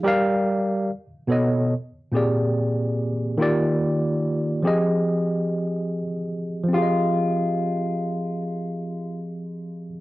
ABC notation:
X:1
M:4/4
L:1/8
Q:"Swing 16ths" 1/4=72
K:Fdor
V:1 name="Tine electric piano"
[G,GBdf]2 z [=B,,=B,=A^c^d] z [_B,,_B,=CG_A=d]2 z | [E,B,FGd]3 [F,CGAe]3 z2 | [F,CGAe]8 |]
V:2 name="Clean electric guitar"
z8 | z8 | F6 z2 |]